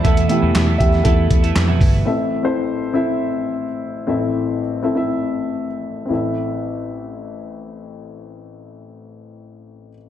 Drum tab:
HH |xxx-x-x-x-xxx-o-|----------------|----------------|----------------|
CP |----x-------x---|----------------|----------------|----------------|
SD |----o--o----o---|----------------|----------------|----------------|
BD |o-----o-o-o---o-|----------------|----------------|----------------|

HH |----------------|
CP |----------------|
SD |----------------|
BD |----------------|